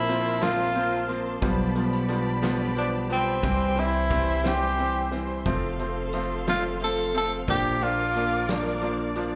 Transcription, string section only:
0.00 1.41 A#4 medium
0.00 1.39 C5 medium
0.00 3.40 A5 medium
0.00 1.40 C6 medium
1.42 5.42 G4 medium
1.42 3.42 D5 medium
1.42 3.42 B5 medium
3.44 7.45 C5 medium
3.44 5.44 E5 medium
3.44 5.44 C6 medium
5.48 7.47 A4 medium
5.48 9.35 F5 medium
5.48 7.48 C6 medium
7.48 9.35 A#4 medium
7.48 9.35 D5 medium
7.48 9.35 D6 medium

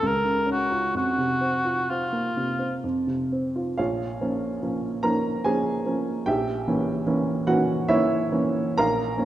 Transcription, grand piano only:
0.03 0.92 C#2 medium
0.25 0.61 C#3 soft
0.46 0.84 C#4 soft
0.72 0.95 F4 soft
0.94 2.79 F2 soft
1.18 1.55 C3 soft
1.41 1.79 C4 soft
1.65 2.02 F4 soft
1.90 2.27 C4 soft
2.13 2.50 A#3 soft
2.37 2.74 C3 soft
2.59 2.83 C4 soft
2.84 3.75 F2 soft
3.07 3.46 C3 soft
3.32 3.69 C4 soft
3.56 3.78 F4 soft
3.78 4.21 A#1 soft
3.78 5.00 F4 medium
3.78 5.00 C#5 medium
3.78 5.03 F5 medium
4.21 4.59 F3 soft
4.21 4.59 A#3 soft
4.21 4.59 C#4 soft
4.63 4.99 F3 soft
4.63 4.99 A#3 soft
4.63 5.00 C#4 soft
5.03 5.40 F3 soft
5.03 5.40 A#3 soft
5.03 5.41 C#4 soft
5.03 5.41 A#4 medium
5.03 5.44 A#5 medium
5.45 5.82 F3 soft
5.45 5.82 A#3 soft
5.45 5.82 C#4 soft
5.45 6.23 G#4 medium
5.45 6.27 G#5 medium
5.86 6.23 F3 soft
5.86 6.23 A#3 soft
5.86 6.23 C#4 soft
6.26 6.66 A#1 medium
6.26 7.43 G4 medium
6.26 7.43 E5 medium
6.26 7.46 G5 medium
6.68 7.03 E3 soft
6.68 7.03 A#3 soft
6.68 7.03 C#4 medium
7.07 7.43 E3 soft
7.07 7.43 A#3 medium
7.07 7.43 C#4 medium
7.47 7.84 E3 medium
7.47 7.84 A#3 medium
7.47 7.85 C#4 medium
7.47 7.86 F#4 medium
7.47 7.88 F#5 medium
7.88 8.28 E3 medium
7.88 8.29 A#3 medium
7.88 8.29 C#4 medium
7.88 8.74 E4 medium
7.88 8.74 C#5 medium
7.88 8.78 E5 medium
8.32 8.73 E3 medium
8.32 8.73 A#3 medium
8.32 8.74 C#4 medium
8.78 9.18 A#1 medium
8.78 9.25 A#4 medium
8.78 9.25 F5 medium
8.78 9.25 A#5 loud
9.17 9.25 F3 soft
9.17 9.25 A#3 medium
9.17 9.25 C#4 medium

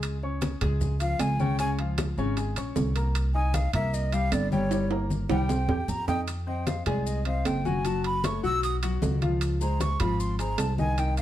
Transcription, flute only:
1.00 1.21 F5 medium
1.20 1.41 G#5 medium
1.40 1.59 G5 medium
1.60 1.71 G#5 medium
3.35 3.56 G#5 medium
3.54 3.74 F5 medium
3.74 3.95 E5 medium
3.94 4.15 D#5 medium
4.13 4.34 F5 loud
4.33 4.51 D5 medium
4.52 4.88 C#5 medium
5.30 5.91 G5 medium
5.89 6.07 A#5 loud
6.08 6.20 G5 loud
6.48 6.69 G5 medium
6.67 6.86 F5 medium
6.87 7.08 D5 medium
7.07 7.26 D#5 medium
7.27 7.48 F5 medium
7.47 7.67 G5 medium
7.66 7.88 G#5 medium
7.86 8.05 A5 medium
8.06 8.26 B5 medium
8.25 8.44 C#6 medium
8.44 8.62 E6 loud
8.64 8.75 D#6 medium
9.61 9.82 A#5 medium
9.81 10.02 C#6 loud
10.00 10.22 B5 loud
10.20 10.39 C6 medium
10.39 10.61 A#5 medium
10.59 10.78 A5 medium
10.79 11.00 G#5 loud
10.99 11.17 G5 medium
11.18 11.22 F5 medium

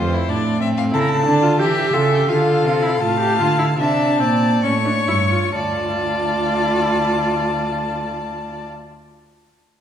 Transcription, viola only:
0.93 1.24 E4 medium
1.26 1.44 D4 loud
1.42 1.61 F4 medium
1.59 1.95 G4 medium
1.93 2.30 A4 medium
2.28 2.84 F4 medium
2.82 3.01 E4 medium
3.01 3.19 F4 medium
3.20 3.38 G4 loud
3.39 3.58 F4 medium
3.59 3.67 E4 medium
3.78 4.21 D4 medium
4.19 4.62 C4 medium
4.63 4.71 C#4 medium
4.85 4.93 D4 medium
5.08 5.16 E4 medium
5.31 5.54 F4 medium
5.55 8.64 F4 medium

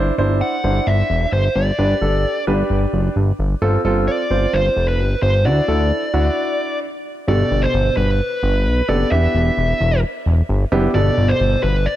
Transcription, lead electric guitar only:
0.41 0.88 F#5 loud
0.87 1.30 E5 loud
1.33 1.54 C5 medium
1.56 2.43 D5 medium
4.08 4.55 D5 loud
4.54 4.88 C5 loud
4.88 5.22 B4 loud
5.23 5.46 C5 medium
5.45 6.79 D5 medium
7.28 7.64 D5 medium
7.63 7.97 C5 medium
7.97 8.91 B4 medium
8.89 9.11 D5 loud
9.12 9.99 E5 loud
10.95 11.30 D5 loud
11.29 11.63 C5 loud
11.63 11.87 B4 medium
11.86 11.96 D5 loud

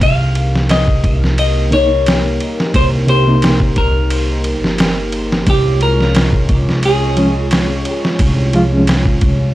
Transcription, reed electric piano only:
1.71 1.87 C3 medium
1.71 1.88 A#3 medium
1.71 1.89 D#4 loud
3.07 3.23 C3 loud
3.07 3.24 A#3 medium
3.07 3.24 G4 loud
3.27 3.50 C3 medium
3.27 3.50 A#3 medium
3.27 3.51 D#4 medium
7.17 7.33 F3 medium
7.17 7.34 G#3 medium
7.17 7.34 C#4 loud
8.54 8.69 F3 medium
8.54 8.69 G#3 medium
8.54 8.70 F4 loud
8.71 8.95 F3 medium
8.71 8.96 G#3 medium
8.71 8.96 C#4 medium

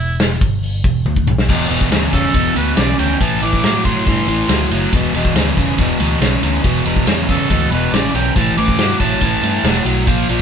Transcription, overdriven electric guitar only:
1.49 1.68 E2 medium
1.49 1.68 B2 medium
1.69 1.89 E2 medium
1.69 1.89 B2 medium
1.91 2.11 E2 medium
1.91 2.11 C#3 medium
2.13 2.33 E2 medium
2.13 2.33 C#3 medium
2.35 2.54 E2 medium
2.35 2.54 B2 medium
2.55 2.75 E2 medium
2.55 2.75 B2 medium
2.76 2.96 E2 medium
2.76 2.97 C#3 medium
2.99 3.18 E2 medium
2.99 3.18 C#3 medium
3.21 3.40 A2 medium
3.21 3.40 E3 medium
3.43 3.62 A2 medium
3.43 3.62 E3 medium
3.64 3.83 A2 medium
3.64 3.83 F#3 medium
3.85 4.05 A2 medium
3.85 4.05 F#3 medium
4.07 4.26 A2 medium
4.07 4.27 E3 medium
4.28 4.47 A2 medium
4.28 4.48 E3 medium
4.49 4.68 A2 medium
4.49 4.69 F#3 medium
4.71 4.90 A2 medium
4.71 4.91 F#3 medium
4.94 5.12 E2 medium
4.94 5.13 B2 loud
5.14 5.34 E2 medium
5.14 5.34 B2 medium
5.36 5.55 E2 medium
5.36 5.55 C#3 medium
5.57 5.76 E2 medium
5.57 5.77 C#3 medium
5.79 5.98 E2 medium
5.79 5.98 B2 medium
6.01 6.20 E2 medium
6.01 6.20 B2 medium
6.21 6.40 E2 medium
6.21 6.41 C#3 medium
6.43 6.62 E2 medium
6.43 6.63 C#3 medium
6.64 6.83 E2 medium
6.64 6.84 B2 medium
6.86 7.05 E2 medium
6.86 7.05 B2 medium
7.07 7.26 E2 medium
7.07 7.27 C#3 medium
7.29 7.48 E2 medium
7.29 7.48 C#3 medium
7.50 7.70 E2 medium
7.50 7.70 B2 medium
7.72 7.91 E2 medium
7.72 7.91 B2 medium
7.93 8.12 E2 medium
7.93 8.13 C#3 medium
8.15 8.34 E2 medium
8.15 8.34 C#3 medium
8.36 8.55 A2 medium
8.36 8.56 E3 medium
8.58 8.77 A2 medium
8.58 8.78 E3 medium
8.79 8.98 A2 medium
8.79 8.99 F#3 medium
9.00 9.20 A2 medium
9.00 9.20 F#3 medium
9.22 9.41 A2 medium
9.22 9.41 E3 medium
9.43 9.62 A2 medium
9.43 9.63 E3 medium
9.65 9.84 A2 medium
9.65 9.84 F#3 medium
9.85 10.05 A2 medium
9.85 10.05 F#3 medium
10.07 10.27 A#2 medium
10.07 10.27 F3 medium
10.29 10.42 A#2 medium
10.29 10.42 F3 medium

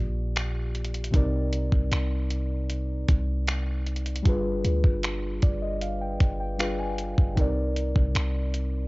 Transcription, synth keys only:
0.00 1.08 A#2 medium
0.00 1.09 A#3 medium
0.00 1.10 F4 medium
0.00 1.11 G4 medium
0.00 1.15 D5 medium
1.11 4.20 C3 medium
1.11 4.21 C4 medium
1.11 4.21 D#4 medium
1.15 4.22 A#4 medium
1.15 4.23 D5 medium
4.22 6.54 G3 medium
4.22 6.55 D4 medium
4.22 6.55 F4 medium
4.27 6.56 G#4 medium
4.27 6.57 B4 medium
5.42 5.61 D5 medium
5.62 5.80 D#5 medium
5.82 6.00 F5 medium
6.01 6.37 G5 medium
6.40 6.58 G5 medium
6.58 7.37 G3 medium
6.58 7.37 D4 soft
6.58 7.37 F4 soft
6.58 7.38 G#4 soft
6.58 7.38 B4 medium
6.58 6.78 F5 medium
6.79 7.33 G#5 medium
7.34 8.88 C3 medium
7.34 8.88 C4 medium
7.34 8.88 D#4 medium
7.39 8.88 A#4 medium
7.39 8.88 D5 medium

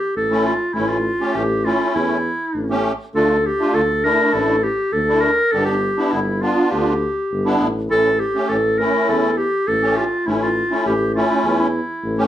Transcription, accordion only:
0.30 0.53 A3 medium
0.30 0.53 C#4 medium
0.30 0.53 E4 medium
0.75 0.98 A3 medium
0.75 0.98 C#4 medium
0.75 0.98 E4 medium
1.20 1.43 A3 medium
1.20 1.43 C#4 medium
1.20 1.43 G4 medium
1.65 2.18 A3 medium
1.65 2.18 C#4 medium
1.65 2.18 E4 medium
2.70 2.92 A3 medium
2.70 2.92 C#4 medium
2.70 2.92 G4 medium
3.15 3.37 A3 medium
3.15 3.37 D4 medium
3.15 3.37 F4 medium
3.59 3.81 A3 medium
3.59 3.82 D4 medium
3.59 3.82 F4 medium
4.04 4.56 A3 medium
4.04 4.56 D4 medium
4.04 4.56 E4 medium
5.08 5.31 A3 medium
5.08 5.31 D4 medium
5.08 5.31 E4 medium
5.53 5.75 B3 medium
5.53 5.75 D4 medium
5.53 5.75 G4 medium
5.97 6.19 B3 medium
5.97 6.19 D4 medium
5.97 6.20 E4 medium
6.42 6.94 B3 medium
6.42 6.94 D4 medium
6.42 6.94 F4 medium
7.45 7.68 B3 medium
7.45 7.68 D4 medium
7.45 7.68 E4 medium
7.89 8.12 A3 medium
7.89 8.12 C#4 medium
7.89 8.12 E4 medium
8.35 8.57 A3 medium
8.35 8.57 C#4 medium
8.35 8.57 G4 medium
8.79 9.31 A3 medium
8.79 9.31 C#4 medium
8.79 9.31 E4 medium
9.82 10.05 A3 medium
9.82 10.05 C#4 medium
9.82 10.05 G4 medium
10.27 10.49 A3 medium
10.27 10.49 C#4 soft
10.27 10.49 E4 medium
10.71 10.93 A3 medium
10.71 10.93 C#4 medium
10.71 10.93 E4 medium
11.16 11.67 A3 medium
11.16 11.67 C#4 medium
11.16 11.68 E4 medium
12.18 12.27 A3 medium
12.18 12.27 C#4 medium
12.18 12.27 G4 medium

